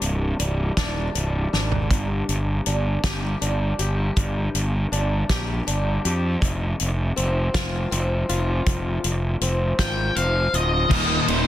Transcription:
0.00 0.32 C1 medium
0.00 1.52 C2 medium
0.00 0.39 G3 medium
0.00 0.77 D4 medium
0.00 closed hi-hat medium
0.39 0.70 C1 medium
0.39 1.14 G3 medium
0.39 closed hi-hat medium
0.77 1.07 D#1 medium
0.77 1.53 D4 medium
0.77 kick medium
0.77 snare loud
0.77 closed hi-hat medium
1.15 1.45 C1 medium
1.15 4.65 G3 medium
1.15 closed hi-hat medium
1.53 1.91 G#1 medium
1.53 2.66 D4 medium
1.53 snare medium
1.72 floor tom medium
1.91 2.21 G1 medium
1.91 3.79 G2 medium
1.91 kick medium
1.91 closed hi-hat medium
2.29 2.59 G1 medium
2.29 closed hi-hat medium
2.66 2.96 G1 medium
2.66 3.40 D4 medium
2.66 closed hi-hat medium
3.04 3.34 G1 medium
3.04 3.78 G4 medium
3.04 kick medium
3.04 snare loud
3.04 closed hi-hat medium
3.41 3.72 G1 medium
3.41 4.91 D4 medium
3.41 closed hi-hat medium
3.79 4.09 G1 medium
3.79 5.28 G4 medium
3.79 closed hi-hat medium
4.16 4.47 G1 medium
4.16 6.04 G2 medium
4.16 kick loud
4.16 closed hi-hat medium
4.54 4.84 G1 medium
4.54 closed hi-hat medium
4.92 5.22 G1 medium
4.92 5.66 D4 medium
4.92 closed hi-hat medium
5.29 5.59 A#1 medium
5.29 6.04 G4 medium
5.29 kick medium
5.29 snare loud
5.29 closed hi-hat medium
5.67 5.97 G1 medium
5.67 6.42 D4 medium
5.67 closed hi-hat medium
6.05 6.35 F2 medium
6.05 6.42 G4 medium
6.05 closed hi-hat medium
6.41 6.72 F1 loud
6.41 8.29 F2 medium
6.41 kick loud
6.41 closed hi-hat medium
6.80 7.10 F1 medium
6.80 closed hi-hat medium
7.16 7.48 F1 medium
7.16 7.90 C4 medium
7.16 closed hi-hat medium
7.54 7.85 F1 medium
7.54 8.28 F4 medium
7.54 kick medium
7.54 snare loud
7.54 closed hi-hat medium
7.91 8.22 F1 medium
7.91 9.40 C4 medium
7.91 closed hi-hat medium
8.29 8.59 F1 medium
8.29 9.78 F4 medium
8.29 closed hi-hat medium
8.66 8.97 F1 medium
8.66 10.54 F2 medium
8.66 kick loud
8.66 closed hi-hat medium
9.04 9.34 F1 medium
9.04 closed hi-hat medium
9.41 9.72 F1 medium
9.41 10.15 C4 medium
9.41 closed hi-hat medium
9.79 10.09 G#1 medium
9.79 10.52 F4 medium
9.79 10.16 G5 medium
9.79 kick medium
9.79 snare loud
9.79 closed hi-hat medium
10.16 10.46 F1 medium
10.16 10.91 C4 medium
10.16 10.55 F5 medium
10.16 closed hi-hat medium
10.53 10.84 D1 medium
10.53 10.91 F4 medium
10.53 11.28 D#5 medium
10.53 closed hi-hat medium
10.89 11.17 D#1 loud
10.89 11.47 D#2 medium
10.89 11.47 A#2 medium
10.89 11.29 D#3 loud
10.89 11.29 G3 loud
10.89 11.28 A#3 loud
10.89 11.47 D#4 medium
10.89 11.26 D#4 loud
10.89 11.47 A#4 medium
10.89 11.47 G5 medium
10.89 11.47 A#5 medium
10.89 kick loud
10.89 crash loud
11.27 11.47 D#1 loud
11.27 11.47 D#3 medium
11.27 11.47 G3 medium
11.27 11.47 A#3 medium
11.27 11.47 D#4 medium
11.27 11.47 C5 medium
11.27 ride medium

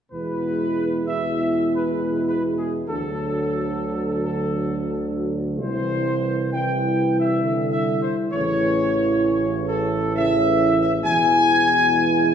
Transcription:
0.12 2.84 E2 medium
0.12 1.02 B2 medium
0.12 1.02 G#3 medium
0.12 1.02 B3 medium
0.12 1.02 E4 medium
0.12 1.02 B4 medium
1.06 1.93 B2 medium
1.06 2.84 G#3 medium
1.06 2.84 B3 medium
1.06 2.84 E4 medium
1.06 1.70 E5 medium
1.74 2.24 B4 medium
1.96 2.84 B2 medium
2.28 2.41 B4 medium
2.57 2.71 G#4 medium
2.88 5.61 D2 medium
2.88 5.60 D3 medium
2.88 5.59 F#3 medium
2.88 5.56 F#3 medium
2.88 5.55 F#4 medium
2.88 4.20 A4 medium
4.24 5.10 A4 medium
5.59 8.05 C2 medium
5.59 6.53 E3 medium
5.59 6.35 G3 medium
5.59 6.35 E4 medium
5.59 6.48 C5 medium
6.52 7.40 E3 medium
6.52 8.28 G3 medium
6.52 8.28 E4 medium
6.52 7.16 G5 medium
7.20 7.68 E5 medium
7.43 8.16 D3 medium
7.72 8.00 E5 medium
8.02 8.16 C5 medium
8.31 11.00 A1 medium
8.31 10.11 C#3 medium
8.31 10.10 E3 medium
8.31 10.09 A3 medium
8.31 10.09 E4 medium
8.31 9.64 C#5 medium
9.68 10.11 A4 medium
10.14 11.00 C#3 medium
10.14 11.00 E3 medium
10.14 10.99 A3 medium
10.14 10.99 E4 medium
10.14 10.77 E5 loud
10.83 10.92 E5 medium
11.03 12.34 E2 medium
11.03 12.34 B2 medium
11.03 12.34 E3 medium
11.03 12.34 G#3 medium
11.03 12.34 E4 medium
11.03 12.34 G#5 loud

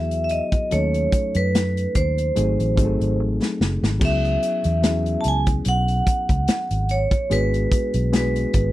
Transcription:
0.00 0.40 E2 medium
0.00 0.33 F#3 medium
0.00 0.33 B3 medium
0.00 0.33 E4 medium
0.00 0.33 F#4 medium
0.00 0.34 G#4 medium
0.00 0.23 E5 medium
0.11 closed hi-hat medium
0.24 0.31 E5 medium
0.29 0.73 D#5 medium
0.29 closed hi-hat medium
0.52 kick medium
0.52 closed hi-hat soft
0.71 1.07 D#2 medium
0.71 1.86 F#3 medium
0.71 1.86 A3 medium
0.71 1.86 C#4 medium
0.71 1.86 D#4 medium
0.71 1.86 A4 medium
0.71 1.38 C#5 medium
0.71 closed hi-hat medium
0.94 closed hi-hat soft
1.12 kick medium
1.12 closed hi-hat medium
1.35 1.86 F#2 medium
1.35 1.92 B4 medium
1.35 closed hi-hat medium
1.55 snare medium
1.55 closed hi-hat loud
1.77 closed hi-hat soft
1.95 2.30 D#2 medium
1.95 3.15 C5 medium
1.95 kick medium
1.95 closed hi-hat medium
2.18 closed hi-hat soft
2.35 2.56 G#1 medium
2.35 2.70 F#3 medium
2.35 2.70 A3 medium
2.35 2.70 C4 medium
2.35 2.70 D#4 medium
2.35 2.71 G#4 medium
2.35 closed hi-hat medium
2.59 2.75 A1 medium
2.59 closed hi-hat soft
2.76 2.96 G#1 medium
2.76 3.62 F#3 medium
2.76 3.63 A3 medium
2.76 3.63 C4 medium
2.76 3.63 D#4 medium
2.76 2.85 G#4 medium
2.76 kick medium
2.76 closed hi-hat medium
2.85 3.67 A4 medium
3.00 3.20 G#1 medium
3.00 closed hi-hat soft
3.20 3.38 A1 medium
3.42 snare medium
3.61 3.79 F#1 medium
3.61 snare medium
3.83 3.99 G#1 medium
3.83 snare medium
4.00 4.36 C#2 medium
4.00 4.59 F#3 medium
4.00 4.59 B3 medium
4.00 4.59 C#4 medium
4.00 4.59 E4 medium
4.00 4.59 G#4 medium
4.00 kick medium
4.00 crash medium
4.05 5.24 E5 medium
4.25 closed hi-hat soft
4.43 closed hi-hat medium
4.64 5.15 E2 medium
4.64 closed hi-hat soft
4.82 5.97 F#3 medium
4.82 5.98 B3 medium
4.82 5.98 C#4 medium
4.82 5.98 E4 medium
4.82 5.98 G#4 medium
4.82 snare loud
4.82 closed hi-hat medium
5.06 closed hi-hat soft
5.21 5.26 A5 medium
5.21 closed hi-hat medium
5.25 5.60 C#2 medium
5.25 5.46 G#5 medium
5.46 kick medium
5.46 closed hi-hat medium
5.65 6.01 B1 medium
5.65 6.95 F#5 loud
5.65 closed hi-hat medium
5.88 closed hi-hat soft
6.07 kick medium
6.07 closed hi-hat medium
6.29 6.45 C#2 medium
6.29 kick medium
6.29 closed hi-hat soft
6.48 muted fingered electric bass stroke soft
6.48 snare loud
6.48 closed hi-hat loud
6.71 7.05 G#1 medium
6.71 closed hi-hat medium
6.89 7.33 C#5 medium
6.89 closed hi-hat medium
7.11 kick medium
7.11 closed hi-hat soft
7.30 7.65 G#1 loud
7.30 7.88 G#3 medium
7.30 7.88 B3 medium
7.30 7.89 D4 medium
7.30 7.89 F#4 medium
7.30 7.89 G#4 medium
7.30 8.10 B4 medium
7.30 closed hi-hat medium
7.54 closed hi-hat soft
7.72 kick medium
7.72 closed hi-hat medium
7.94 8.45 B1 medium
7.94 closed hi-hat medium
8.12 8.72 G#3 medium
8.12 8.72 B3 medium
8.12 8.72 D4 medium
8.12 8.72 F#4 medium
8.12 8.72 G#4 medium
8.12 snare medium
8.12 closed hi-hat loud
8.16 8.72 B4 medium
8.36 closed hi-hat soft
8.53 8.72 G#1 medium
8.53 kick medium
8.53 closed hi-hat medium

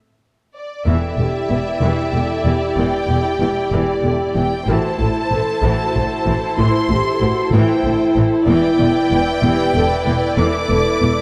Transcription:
0.56 0.85 D5 medium
0.86 0.95 E1 medium
0.86 0.95 E2 medium
0.86 1.17 E3 soft
0.86 4.64 E4 soft
0.86 4.64 G4 soft
0.86 1.16 A4 medium
0.86 4.64 D5 soft
0.86 2.78 E5 medium
1.18 1.26 E1 soft
1.18 1.27 E2 soft
1.18 1.27 D3 soft
1.18 1.51 G4 soft
1.50 1.58 E1 soft
1.50 1.58 E2 soft
1.50 1.59 E3 soft
1.50 1.82 B4 medium
1.81 1.89 E1 medium
1.81 1.89 E2 medium
1.81 2.12 E3 medium
1.81 2.14 G4 soft
2.13 2.21 E1 soft
2.13 2.22 E2 soft
2.13 2.22 D3 soft
2.13 2.46 A4 soft
2.45 2.53 E1 soft
2.45 2.54 E2 soft
2.45 2.54 E3 soft
2.45 4.64 G4 medium
2.77 2.85 E1 soft
2.77 2.85 E2 medium
2.77 3.07 E3 soft
2.77 3.71 G5 medium
3.09 3.17 E1 soft
3.09 3.17 E2 soft
3.09 3.18 D3 soft
3.40 3.48 E1 soft
3.40 3.49 E2 soft
3.40 3.49 E3 soft
3.72 3.80 E1 medium
3.72 3.80 E2 medium
3.72 4.02 E3 soft
3.72 4.36 D5 medium
4.03 4.12 E1 soft
4.03 4.11 E2 soft
4.03 4.12 D3 soft
4.36 4.44 E1 soft
4.36 4.44 E2 soft
4.36 4.45 E3 soft
4.36 4.67 G5 medium
4.66 4.76 A1 medium
4.66 4.74 A2 medium
4.66 4.97 E3 medium
4.66 8.45 E4 soft
4.66 5.00 F#4 medium
4.66 8.45 A4 soft
4.66 8.45 C5 medium
4.66 6.58 A5 medium
4.99 5.08 A1 soft
4.99 5.07 A2 soft
4.99 5.08 D3 soft
4.99 5.31 E4 soft
5.31 5.40 A1 soft
5.31 5.39 A2 soft
5.31 5.40 E3 soft
5.31 5.62 A4 medium
5.63 5.71 A1 medium
5.63 5.71 A2 medium
5.63 5.93 E3 medium
5.63 6.59 F#4 medium
5.94 6.03 A1 soft
5.94 6.02 A2 soft
5.94 6.03 D3 soft
6.26 6.35 A1 soft
6.26 6.34 A2 soft
6.26 6.35 E3 medium
6.58 6.66 A1 medium
6.58 6.66 A2 medium
6.58 6.88 E3 medium
6.58 6.90 E4 medium
6.58 7.52 C6 medium
6.89 6.98 A1 medium
6.89 6.98 A2 medium
6.89 6.97 D3 soft
6.89 7.22 G4 medium
7.21 7.29 A1 soft
7.21 7.29 A2 soft
7.21 7.30 E3 soft
7.21 7.54 F#4 medium
7.53 7.61 A1 medium
7.53 7.61 A2 medium
7.53 7.83 E3 medium
7.53 9.27 E4 medium
7.53 8.16 G5 medium
7.84 7.92 A1 medium
7.84 7.93 A2 soft
7.84 7.93 D3 soft
8.16 8.24 A1 medium
8.16 8.24 A2 medium
8.16 8.25 E3 medium
8.48 8.56 E1 medium
8.48 8.56 E2 medium
8.48 8.78 E3 medium
8.48 11.22 E4 medium
8.48 11.22 B4 medium
8.48 11.22 D5 medium
8.48 10.35 G5 loud
8.80 8.88 E1 medium
8.80 8.88 E2 medium
8.80 8.89 D3 soft
9.12 9.20 E1 soft
9.12 9.20 E2 medium
9.12 9.20 E3 soft
9.43 9.52 E1 medium
9.43 9.51 E2 medium
9.43 9.74 E3 medium
9.43 9.75 G4 medium
9.74 9.83 E1 medium
9.74 9.82 E2 medium
9.74 9.85 D3 medium
9.74 10.07 A4 medium
10.06 10.15 E1 medium
10.06 10.14 E2 medium
10.06 10.15 E3 medium
10.06 10.38 B4 medium
10.38 10.47 E1 medium
10.38 10.46 E2 medium
10.38 10.69 E3 medium
10.38 11.22 A4 medium
10.38 11.22 D6 loud
10.70 10.78 E1 medium
10.70 10.78 E2 medium
10.70 10.80 D3 medium
11.01 11.10 E1 medium
11.01 11.09 E2 soft
11.01 11.11 E3 medium

